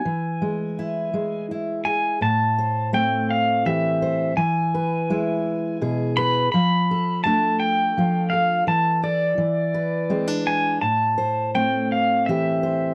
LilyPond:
<<
  \new Staff \with { instrumentName = "Pedal steel guitar" } { \time 3/4 \key a \minor \tempo 4 = 84 gis''2 r8 gis''8 | a''4 g''8 f''8 e''4 | gis''2~ gis''8 b''8 | b''4 a''8 g''4 f''8 |
a''8 d''2 gis''8 | a''4 g''8 f''8 e''4 | }
  \new Staff \with { instrumentName = "Steel-string acoustic guitar" } { \time 3/4 \key a \minor << { r4 e'4 e'8 gis'8 | r8 c''8 c'4 g'8 c''8 | r8 b'8 e'4 gis'8 b'8 | r8 a'8 d'4 f'8 a'8~ |
a'8 a'8 r8 b'8 c'16 d'8. | r8 c''8 c'4 g'8 c''8 | } \\ { e8 gis4 gis4. | a,4 a4 e4 | e4 gis4 b,4 | f4 a4 f4 |
e4 e4 gis4 | a,4 a4 e4 | } >> }
>>